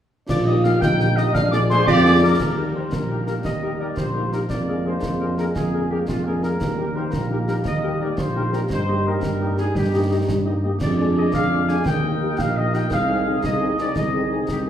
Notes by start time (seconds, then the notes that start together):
0.28 A#1 D#3 A#3 F4 D5 D6, concert bass drum, snare, crash
0.46 A#3 D#4 G4 D#5 D#6
0.64 A#3 D#4 G4 F5 F6, snare
0.80 A#1 D#4 G5 G6, concert bass drum, snare
1.00 A#3 D#4 G4, snare
1.16 A#3 D#4 G4 D#5 D#6, snare
1.33 A#1 F3 G#3 D4 F5 F6, concert bass drum, snare
1.51 A#3 F4 G#4 D5 D6, snare
1.70 A#3 F4 G#4 C5 C6, snare
1.86 F2 F4 G4 D5 D6, concert bass drum, snare
2.04 A#3 F4 G#4
2.22 A#3 F4 G#4 A#4
2.39 D#2 G3 A#3, concert bass drum, snare, crash
2.56 A#3 D#4 G4 A#4
2.74 A#3 D#4 G4 A#4 C5
2.92 A#1 A#4, concert bass drum, snare
3.09 A#3 D#4 G4 A#4
3.26 A#3 D#4 G4 A#4, snare
3.44 D#2 D#5, concert bass drum, snare
3.62 A#3 D#4 G4 A#4
3.79 A#3 D#4 G4 A#4 D5
3.96 A#1 C5, concert bass drum, snare
4.14 A#3 D#4 G4 A#4
4.32 A#3 D#4 G4 A#4, snare
4.49 F2 G#3 A#3 D5, concert bass drum, snare
4.67 A#3 D4 G#4 A#4
4.85 A#3 D4 G#4 A#4 C5
5.02 F2, concert bass drum, snare
5.20 A#3 D4 G#4 A#4
5.37 A#3 D4 G#4 A#4, snare
5.55 F2 G#4, concert bass drum, snare
5.74 A#3 D4 G#4 A#4
5.90 A#3 D4 G4 G#4 A#4
6.08 F2 F4, concert bass drum, snare
6.25 A#3 D4 G#4 A#4
6.42 A#3 D4 G#4 A#4, snare
6.61 D#2 G3 A#3, concert bass drum, snare, crash
6.78 A#3 D#4 G4 A#4
6.95 A#3 D#4 G4 A#4 C5
7.11 A#1 A#4, concert bass drum, snare
7.30 A#3 D#4 G4 A#4
7.48 A#3 D#4 G4 A#4, snare
7.65 D#2 D#5, concert bass drum, snare
7.83 A#3 D#4 G4 A#4
8.00 A#3 D#4 G4 A#4 D5
8.17 A#1 C5, concert bass drum, snare
8.35 A#3 D#4 G4 A#4
8.52 A#3 D#4 G4 A#4, snare
8.70 G2 G3 D#4 C5, concert bass drum, snare
8.88 A#3 D#4 G4 D#5
9.05 A#3 D#4 G4 A#4 D#5
9.23 G2, concert bass drum, snare
9.40 A#3 D#4 G4 D#5
9.58 A#3 D#4 G4 G#4 D#5, snare
9.75 G2 G4, concert bass drum, snare
9.93 A#3 D#4 G4 D#5
10.10 A#3 D#4 G4 D#5
10.28 G2, concert bass drum, snare
10.46 A#3 D#4 G4 D#5
10.64 A#3 D#4 G4 D#5
10.81 F2 G#3 D4 G#4 D5, concert bass drum, snare, crash
10.98 G#3 D4 G#4 D5
11.16 G#3 D4 G#4 D#5
11.33 F2 F5, concert bass drum, snare
11.52 G#3 D4 G#4
11.68 G#3 D4 G#4 G#5, snare
11.85 D#2 A#3 D#4 A#4 D#5 G5, concert bass drum, snare
12.05 A#3 D#4 G4
12.22 A#3 D#4 G4
12.38 A#1 F5, concert bass drum, snare
12.57 A#3 D#4 G4 D#5
12.74 A#3 D#4 G4 G5, snare
12.90 C2 G#3 D#4 G#4 D#5 F5, concert bass drum, snare
13.09 C4 D#4 G#4
13.27 C4 D#4 G#4
13.43 C2 D#5, concert bass drum, snare
13.61 C4 D#4 G#4
13.78 C4 D#4 G#4 D5, snare
13.96 C2 D#5, concert bass drum, snare
14.14 C4 D#4 G#4
14.31 C4 D#4 G#4
14.48 C2 G4, concert bass drum, snare